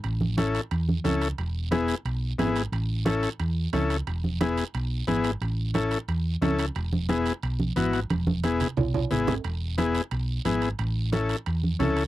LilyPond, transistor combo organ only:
\new Staff \with { instrumentName = "Transistor combo organ" } { \time 4/4 \key e \major \tempo 4 = 178 r4 <cis' e' a'>8 r4. <cis' e' a'>8 r8 | r4 <b e' gis'>8 r4. <b e' gis'>8 r8 | r4 <cis' e' a'>8 r4. <cis' e' a'>8 r8 | r4 <b e' gis'>8 r4. <b e' gis'>8 r8 |
r4 <cis' e' a'>8 r4. <cis' e' a'>8 r8 | r4 <b e' gis'>8 r4. <b e' fis'>8 r8 | r4 <b e' gis'>8 r4. <b e' gis'>8 r8 | r4 <b e' gis'>8 r4. <b e' gis'>8 r8 |
r4 <cis' e' a'>8 r4. <cis' e' a'>8 r8 | }